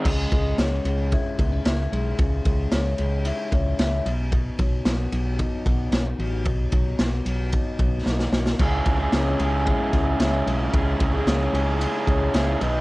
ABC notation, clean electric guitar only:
X:1
M:4/4
L:1/16
Q:1/4=112
K:C#m
V:1 name="Clean electric guitar"
C,2 G,2 C2 G,2 E2 B, C E2 G,2 | C,2 G,2 C2 G,2 E2 C2 E2 B,,2 | B,,2 F,2 B,2 F,2 D2 B,2 C D F,2 | B,,2 F,2 B,2 F,2 D2 B,2 D2 F,2 |
C,2 G,2 C2 G,2 E2 C2 E2 G,2 | C,2 G,2 C2 G,2 E2 C2 E2 B,,2 |]